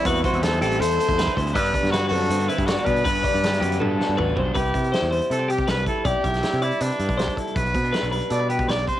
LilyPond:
<<
  \new Staff \with { instrumentName = "Clean electric guitar" } { \time 4/4 \key c \lydian \tempo 4 = 160 b'8 c''4 g'8 a'4 b'8 c''8 | d''4 b'8 a'4 b'8 d''4 | b'8 d''4 g'8 a'4 b'8 c''8 | b'4 c''8 c''4 g'8 b'4 |
d''8 e''4 d''8 b'4 c''8 a'8 | r4 b'8 b'4 g'8 b'4 | }
  \new Staff \with { instrumentName = "Trumpet" } { \time 4/4 \key c \lydian fis'8 fis'8 a'8 a'8 c''4. r8 | b'4 fis'8 fis'4 e'8 fis'8 b'8~ | b'2. r4 | g'4. r8 a'8 g'8 b'8 a'8 |
g'4. e'8 d'4. r8 | b'4. r8 d''8 b'8 d''8 c''8 | }
  \new Staff \with { instrumentName = "Clean electric guitar" } { \time 4/4 \key c \lydian << { c'8 c'8 c'8 c'8 a'8 a'4 r8 | r4 d'8 c'16 d'16 c'16 d'16 c'16 d'16 d'8 d'8 | r4 d'8 fis'8 d'8 fis'8 fis'8 c'16 d'16 | e'8 e'8 e'4 e'16 g'4~ g'16 e'8 |
e'8 e'8 e'4 b'4. e'8 | e'16 fis'16 c'16 d'16 e'16 fis'8. a'16 b'4~ b'16 c'16 r16 | } \\ { <e g>2.~ <e g>8 e8 | g,8 g2.~ g8 | g,8 g2.~ g8 | c4. g4. g4 |
c4. g4. g4 | b,4. g4. b,4 | } >> }
  \new Staff \with { instrumentName = "Overdriven electric guitar" } { \time 4/4 \key c \lydian <e g c' e'>8 <g c' e'>8 <e g c' e'>8 <e g c' e'>8 <e g c' e'>8 <g c' e'>8 <e g c' e'>8 <g c' e'>8 | <g, d g b d'>8 <g b d'>8 <d g b d'>8 <g, d g b d'>8 <d g b d'>8 <g b d'>8 <g, d g b d'>8 <g b d'>8 | <g, d g b d'>8 <g b d'>8 <d g b d'>8 <g, d g b d'>8 <d g b d'>8 <g b d'>8 <g, d g b d'>8 <g b d'>8 | r1 |
r1 | r1 | }
  \new Staff \with { instrumentName = "Fingered electric bass" } { \clef bass \time 4/4 \key c \lydian e,8 r16 e,8. a,,8 e,8 r16 e,8 r16 d,8 | g,8 r16 g,8. fis,8 g,8 r16 g,8 r16 b,8 | g,8 r16 g,8. fis,8 g,8 r16 g,16 a,,8 b,,8 | c,8 c8 r16 e,8 r16 c4 c,8 r8 |
b,,16 r16 b,,8 r16 c8 r16 c16 r16 g,16 b,,8 r8. | b,,8 b,8 r16 b,,8 r16 b,4 b,,8 r8 | }
  \new DrumStaff \with { instrumentName = "Drums" } \drummode { \time 4/4 <hh bd>16 hh16 <hh bd>16 hh16 <hh sn>16 hh16 hh16 hh16 hh16 hh16 hh16 bd16 <hh sn>16 <hh bd>16 <hh bd>16 hh16 | <hh bd>16 hh16 <hh bd>16 <hh sn>16 <hh sn>8 hho8 hh16 hh16 hh16 <hh bd>16 <hh sn>16 hh16 <hh bd>16 hh16 | <hh bd>16 hh16 <hh bd>16 hh16 <hh sn>16 <hh sn>16 hh16 hh16 tommh8 sn8 toml8 bd8 | <hh bd>16 hh16 <hh bd>16 hh16 <hh sn>16 <hh sn>16 hho16 hh16 hh8 hh16 <hh bd>16 <hh sn>16 hh16 <hh bd>8 |
<hh bd>8 <hh bd>16 <hh sn>16 <hh sn>16 hh16 hh16 hh16 hh16 hh16 hh16 <hh bd>16 <hh sn>16 <hh bd>16 <hh bd>16 hh16 | <hh bd>16 hh16 <hh bd>16 hh16 <hh sn>16 hh16 hho16 hh16 hh8 hh16 <hh bd>16 <hh sn>16 hh16 <hh bd>8 | }
>>